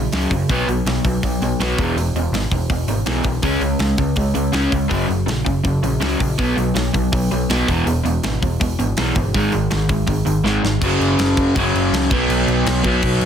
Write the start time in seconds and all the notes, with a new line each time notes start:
Already playing: F#2 C#3
0.12 C#2 F#2 C#3 F#3, snare, open hi-hat
0.31 F#2 C#3, kick, open hi-hat
0.49 B1 B2 F#3 B3, kick, open hi-hat
0.67 B1 B2 F#3, open hi-hat
0.85 B1 B2 F#3, snare, open hi-hat
1.04 B1 B2 F#3, kick, open hi-hat
1.23 B1 B2 F#3, kick, open hi-hat
1.40 B1 B2 F#3, open hi-hat
1.60 B1 B2 F#3 B3, snare, open hi-hat
1.78 E1 E2 B2 E3, kick, open hi-hat
1.96 E1 E2 B2, open hi-hat
2.14 E1 E2 B2, open hi-hat
2.32 G#1 E2 B2, snare, open hi-hat
2.51 E1 E2 B2, kick, open hi-hat
2.70 E1 E2 B2, kick, open hi-hat
2.88 G#1 E2 B2, open hi-hat
3.06 B1 E2 B2 E3, snare, open hi-hat
3.24 B1 E2 B2, kick, open hi-hat
3.42 C#2 C#3 G#3 C#4, kick, open hi-hat
3.60 C#2 C#3 G#3, open hi-hat
3.79 C#2 C#3 G#3, snare, open hi-hat
3.98 C#2 C#3 G#3, kick, open hi-hat
4.16 C#2 C#3 G#3, kick, open hi-hat
4.34 C#2 C#3 G#3, open hi-hat
4.52 C#2 C#3 G#3 C#4, snare, open hi-hat
4.71 C#2 C#3 G#3, kick, open hi-hat
4.89 F#1 F#2 C#3 F#3, kick, open hi-hat
5.07 F#1 F#2 C#3, open hi-hat
5.26 A#1 F#2 C#3, snare, open hi-hat
5.45 F#1 F#2 C#3, kick, open hi-hat
5.64 F#1 F#2 C#3, kick, open hi-hat
5.83 A#1 F#2 C#3, open hi-hat
6.01 C#2 F#2 C#3 F#3, snare, open hi-hat
6.20 A#1 F#2 C#3, kick, open hi-hat
6.39 B1 B2 F#3 B3, kick, open hi-hat
6.57 B1 B2 F#3, open hi-hat
6.75 B1 B2 F#3, snare, open hi-hat
6.94 B1 B2 F#3, kick, open hi-hat
7.12 B1 B2 F#3, kick, open hi-hat
7.31 B1 B2 F#3, open hi-hat
7.49 B1 B2 F#3 B3, snare, open hi-hat
7.68 E1 E2 B2 E3, kick, open hi-hat
7.86 E1 E2 B2, open hi-hat
8.04 E1 E2 B2, open hi-hat
8.23 G#1 E2 B2, snare, open hi-hat
8.42 E1 E2 B2, kick, open hi-hat
8.60 E1 E2 B2, kick, open hi-hat
8.79 G#1 E2 B2, open hi-hat
8.97 B1 E2 B2 E3, snare, open hi-hat
9.15 G1 E2 B2, kick, open hi-hat
9.34 G#1 G#2 D#3 G#3, kick, open hi-hat
9.52 G#1 G#2 D#3, open hi-hat
9.70 G#1 G#2 D#3, snare, open hi-hat
9.89 G#1 G#2 D#3, kick, open hi-hat
10.07 G#1 G#2 D#3, kick, open hi-hat
10.26 G#1 G#2 D#3, open hi-hat
10.44 G#1 G#2 D#3 G#3, snare
10.63 G#1 G#2 D#3, snare
10.81 F#1 F#2 C#3 F#3, kick, crash
11.01 F#1, crash
11.19 F#1, snare, crash
11.37 F#1, kick, crash
11.55 F#1 F#2 C#3 F#3, kick, crash
11.75 F#1, crash
11.92 C#2, snare, crash
12.10 B1 B2 F#3 B3, kick, crash
12.29 B1, crash
12.47 B1, crash
12.66 B1, snare, crash
12.83 B1 B2 F#3 B3, kick, crash
13.02 B1, kick, crash
13.21 B1, crash